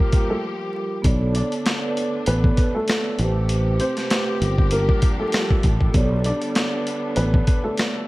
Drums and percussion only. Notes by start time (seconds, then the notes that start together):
0.12 kick, closed hi-hat
1.04 kick, closed hi-hat
1.35 closed hi-hat
1.52 closed hi-hat
1.66 snare, closed hi-hat
1.97 closed hi-hat
2.26 closed hi-hat
2.44 kick
2.57 kick, closed hi-hat
2.88 snare, closed hi-hat
3.19 closed hi-hat
3.49 closed hi-hat
3.80 closed hi-hat
3.97 snare, closed hi-hat
4.10 snare, closed hi-hat
4.42 closed hi-hat
4.58 kick
4.71 closed hi-hat
4.89 kick
5.02 kick, closed hi-hat
5.32 snare, closed hi-hat
5.50 kick
5.63 kick, closed hi-hat
5.81 kick
5.94 kick, closed hi-hat
6.24 closed hi-hat
6.42 closed hi-hat
6.55 snare, closed hi-hat
6.87 closed hi-hat
7.16 closed hi-hat
7.34 kick
7.47 kick, closed hi-hat
7.78 snare, closed hi-hat